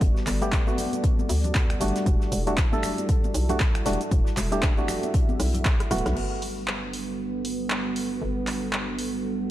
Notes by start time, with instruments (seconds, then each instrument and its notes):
Already playing: analog synth pad G3 B3 F#4 A4 D5
0.01 fm bass G1, kick, closed hi-hat, cabasa
0.17 snare, cabasa
0.27 fm bass G1, snare, clap, closed hi-hat, open hi-hat, cabasa
0.42 synth stab A3 B3 G4, closed hi-hat, cabasa
0.52 kick, snare, clap, closed hi-hat, cabasa
0.67 synth stab A3 B3 F#4, muted conga, high conga, cabasa
0.78 closed hi-hat, open hi-hat, low conga, cabasa
0.93 closed hi-hat, muted conga, cabasa
1.04 kick, closed hi-hat, cabasa
1.19 high conga, cabasa
1.29 fm bass D2, open hi-hat, cabasa
1.44 closed hi-hat, low conga, cabasa
1.55 kick, snare, clap, closed hi-hat, cabasa
1.70 finger snap, closed hi-hat, cabasa
1.80 fm bass G1, synth stab G3 A3 D4 F#4, closed hi-hat, open hi-hat, cabasa
1.88 closed hi-hat
1.95 snare, closed hi-hat, cabasa
2.06 fm bass E1, analog synth pad E4, kick, closed hi-hat, cabasa
2.21 snare, cabasa
2.32 fm bass E1, closed hi-hat, open hi-hat, cabasa
2.47 synth stab G3 A3 D4 F#4, closed hi-hat, cabasa
2.57 kick, snare, clap, closed hi-hat, cabasa
2.72 synth stab G3 A3 D4 A4, muted conga, high conga, cabasa
2.83 finger snap, closed hi-hat, open hi-hat, low conga, cabasa
2.98 closed hi-hat, muted conga, cabasa
3.09 kick, closed hi-hat, cabasa
3.24 muted conga, cabasa
3.34 fm bass B1, closed hi-hat, open hi-hat, cabasa
3.49 synth stab G3 A3 D4 F#4, closed hi-hat, low conga, cabasa
3.60 kick, snare, clap, closed hi-hat, cabasa
3.75 finger snap, closed hi-hat, cabasa
3.86 fm bass E1, synth stab G3 A3 D4 F#4, snare, closed hi-hat, open hi-hat, cabasa
3.93 closed hi-hat
4.01 closed hi-hat, cabasa
4.11 fm bass E1, analog synth pad E5, kick, closed hi-hat, cabasa
4.26 snare, cabasa
4.37 fm bass E1, snare, clap, closed hi-hat, open hi-hat, cabasa
4.52 synth stab G3 A3 D4 G4, closed hi-hat, muted conga, cabasa
4.62 kick, snare, clap, closed hi-hat, cabasa
4.77 synth stab G3 A3 D4 F#4, muted conga, high conga, cabasa
4.88 finger snap, closed hi-hat, open hi-hat, low conga, cabasa
5.03 closed hi-hat, muted conga, cabasa
5.14 kick, closed hi-hat, cabasa
5.29 high conga, cabasa
5.40 fm bass B1, cross-stick, open hi-hat, cabasa
5.54 closed hi-hat, low conga, cabasa
5.65 kick, cross-stick, snare, clap, closed hi-hat, cabasa
5.80 fm bass A1, cross-stick, closed hi-hat, cabasa
5.91 fm bass D1, synth stab A3 B3 F#4, cross-stick, closed hi-hat, open hi-hat, cabasa
5.98 closed hi-hat
6.05 fm bass B1, cross-stick, snare, closed hi-hat, low conga, cabasa
6.17 fm bass G1, analog synth pad G3 D4 F#4 A4 B4, ambient pad B3, crash
6.42 open hi-hat
6.68 clap
6.93 open hi-hat
7.10 ambient pad A4
7.38 ambient pad F#5
7.45 open hi-hat
7.70 clap
7.96 open hi-hat
8.22 fm bass G1
8.47 clap, open hi-hat
8.73 clap
8.99 open hi-hat